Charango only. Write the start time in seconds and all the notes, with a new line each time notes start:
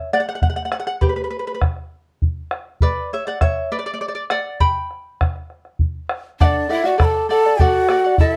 Already playing: E5
0.13 D5 F#5
0.20 F#5
0.29 F#5
0.35 F#5
0.43 F#5
0.50 F#5
0.56 F#5
0.65 F#5
0.72 F#5
0.80 F#5
0.87 F#5
1.01 G4 B4
1.09 B4
1.16 B4
1.24 B4
1.30 B4
1.39 B4
1.47 B4
1.55 B4
2.82 B4 D5
3.13 C#5 E5
3.27 D5 F#5
3.42 C#5 E5
3.72 B4 D5
3.79 D5
3.86 D5
3.94 D5
4.01 D5
4.08 D5
4.15 D5
4.31 D5 F#5
4.60 G5 B5
6.40 A4 D5 F#5
6.69 A4 D5 F#5
6.84 D5 F#5
6.98 A4 D5 F#5
7.29 A4 D5 F#5
7.45 D5 F#5
7.60 A4 D5 F#5
7.89 A4 D5 F#5
8.04 D5 F#5
8.20 E4 A4 E5 A5